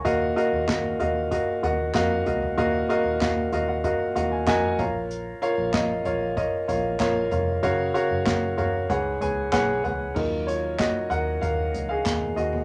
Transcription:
<<
  \new Staff \with { instrumentName = "Grand piano" } { \time 4/4 \key ees \minor \tempo 4 = 95 << { des'''16 r2. r8. | r4. f''16 ges''16 f''8 ges''16 aes''16 bes''8 bes''8 | r1 | r1 |
bes'8 <f' des''>8 <ges' ees''>8 <bes' ges''>8 <bes' f''>8. <aes' f''>8. <ges' ees''>8 | } \\ { <ges' bes' ees'' f''>8 <ges' bes' ees'' f''>8 <ges' bes' ees'' f''>8 <ges' bes' ees'' f''>8 <ges' bes' ees'' f''>8 <ges' bes' ees'' ges''>8 <ges' bes' ees'' f''>8 <ges' bes' ees'' f''>8 | <ges' bes' ees'' f''>8 <ges' bes' ees'' f''>8 <ges' bes' ees'' f''>8 <ges' bes' ees''>8 <ges' bes' ees''>8 <ges' bes' ees'' f''>8 <ges' bes' ees'' aes''>8 <f' bes' des'' f''>8~ | <f' bes' des'' f''>8 <f' bes' des'' f''>8 <f' bes' des'' ees''>8 <f' bes' des'' f''>8 <f' bes' des'' ees''>8 <f' bes' des'' f''>8 <f' bes' des'' f''>8 <f' bes' des'' f''>8 | <ges' bes' des'' f''>8 <ges' bes' des'' f''>8 <ges' bes' des'' f''>8 <ges' bes' des'' f''>8 <aes' ces'' des'' ges''>8 <aes' ces'' des'' aes''>8 <aes' ces'' des'' ges''>8 <aes' ces'' des'' ges''>8 |
r1 | } >> }
  \new Staff \with { instrumentName = "Grand piano" } { \clef bass \time 4/4 \key ees \minor bes,4. r2 r8 | bes,4. r2 r8 | r1 | des4. r8 aes,4. r8 |
<ges ees' f'>8 r2. r8 | }
  \new Staff \with { instrumentName = "Picked electric bass" } { \clef bass \time 4/4 \key ees \minor ees,8 r16 ees,16 ees,8 ees,8. r16 ees,8 f,8 des,8 | ees,8 r16 ees,16 ees,8 ees,8. r16 ees,8 f,8 bes,,8~ | bes,,8 r16 bes,,16 bes,,8 bes,,8. r16 bes,,8 bes,,8 f,,8 | ges,,8 r16 ges,,16 ges,,8 ges,,8 des,8 des,8 ces,8 des,8 |
ees,4~ ees,16 r16 ees,8 ees,8 des,8 ees,8 ees,8 | }
  \new DrumStaff \with { instrumentName = "Drums" } \drummode { \time 4/4 <hh bd>8 hh8 <hc hh bd sn>8 <hh tomfh>8 <hh bd>8 <hh tomfh>8 <hc hh bd sn>8 <hh tomfh>16 tomfh16 | <hh bd>8 hh8 <hc hh bd sn>8 <hh tomfh>8 <hh bd>8 <hh tomfh>8 <hc hh bd sn>8 <hh bd tomfh>8 | hh8 hh8 <hc hh bd sn>8 <hh tomfh>8 <hh bd>8 <hh tomfh>8 <hc hh bd sn>8 <hh tomfh>8 | <hh bd>8 hh8 <hc hh bd sn>8 <hh tomfh>8 <hh bd>8 <hh tomfh>8 <hc hh bd sn>8 <hh tomfh>8 |
<cymc bd>8 hh8 <hc hh bd sn>8 hh8 <hh bd>8 <hh tomfh>8 <hc hh bd sn>16 tomfh16 hh16 tomfh16 | }
>>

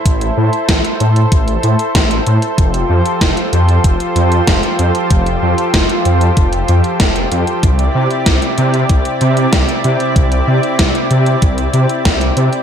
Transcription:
<<
  \new Staff \with { instrumentName = "Analog synth pad" } { \time 4/4 \key f \lydian \tempo 4 = 95 << { <a' c''>1~ | <a' c''>1~ | <a' c''>1 | d''1~ |
d''1 | } \\ { e'1 | <f f' g'>1~ | <f f' g'>1 | <c c' e'>1~ |
<c c' e'>1 | } >> }
  \new Staff \with { instrumentName = "Detuned saw bass" } { \clef bass \time 4/4 \key f \lydian a,,8 a,8 a,,8 a,8 a,,8 a,8 a,,8 a,8 | f,,8 f,8 f,,8 f,8 f,,8 f,8 f,,8 f,8 | f,,8 f,8 f,,8 f,8 f,,8 f,8 f,,8 f,8 | c,8 c8 c,8 c8 c,8 c8 c,8 c8 |
c,8 c8 c,8 c8 c,8 c8 c,8 c8 | }
  \new DrumStaff \with { instrumentName = "Drums" } \drummode { \time 4/4 <hh bd>16 hh8 hh16 <hh bd sn>16 hh16 hh16 hh16 <hh bd>16 hh16 hh16 hh16 <hh bd sn>16 hh16 hh16 hh16 | <hh bd>16 hh8 hh16 <hh bd sn>16 hh16 hh16 hh16 <hh bd>16 hh16 hh16 hh16 <hh bd sn>16 hh16 hh16 hh16 | <hh bd>16 hh8 hh16 <hh bd sn>16 hh16 hh16 hh16 <hh bd>16 hh16 hh16 hh16 <hh bd sn>16 hh16 hh16 hh16 | <hh bd>16 hh8 hh16 <hh bd sn>16 hh16 hh16 hh16 <hh bd>16 hh16 hh16 hh16 <hh bd sn>16 hh16 hh16 hh16 |
<hh bd>16 hh8 hh16 <hh bd sn>16 hh16 hh16 hh16 <hh bd>16 hh16 hh16 hh16 <hh bd sn>16 hh16 hh16 hh16 | }
>>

